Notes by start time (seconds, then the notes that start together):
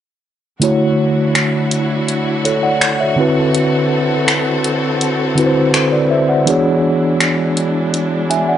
0.60 D3 A3 D4 E4 F#4 C#5, closed hi-hat
1.35 finger snap, closed hi-hat
1.71 closed hi-hat
2.08 closed hi-hat
2.45 A4 C#5, closed hi-hat
2.63 D5 F#5
2.81 finger snap, closed hi-hat
3.00 C#5 E5
3.16 D3 C4 E4 F#4 A4
3.20 B4
3.55 closed hi-hat
4.28 finger snap, closed hi-hat
4.64 closed hi-hat
5.01 closed hi-hat
5.35 D3 C4 E4 F#4, closed hi-hat
5.39 B4
5.46 C5
5.74 A4 C5, finger snap, closed hi-hat
5.92 B4 D5
6.11 C5 E5
6.29 D5 F#5
6.45 E3 G#3 B3 D4 F#4 G#4, closed hi-hat
6.50 C#5
7.20 finger snap, closed hi-hat
7.57 closed hi-hat
7.94 closed hi-hat
8.30 E5 G#5, closed hi-hat
8.49 D5 F#5